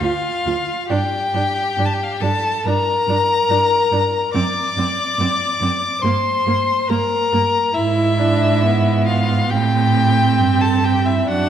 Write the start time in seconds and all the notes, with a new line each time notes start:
0.00 D2 F4 F5
0.46 D2 F4
0.88 G2 D4 G4 G5
1.34 G2 D4
1.77 G2 D4
1.85 A5
1.94 G5
2.03 F5
2.13 G5
2.20 G2 D4 A4 A5
2.64 G2 D4 A#4 A#5
3.07 G2 D4
3.49 G2 D4
3.91 G2 D4
4.33 F#2 C4 D5 D6
4.76 F#2 C4
5.18 F#2 C4
5.60 F#2 C4
6.01 G2 A#3 C5 C6
6.46 G2 A#3
6.88 G2 A#3 A#4 A#5
7.33 G2 A#3
7.74 G#2 E4 E5
8.18 D4
8.64 B3
9.06 F4 F5
9.50 A2 C4 G4 G5
10.38 G2
10.61 A4 A5
10.84 G4 G5
11.05 E4 E5
11.27 F#2 D4 F#4 F#5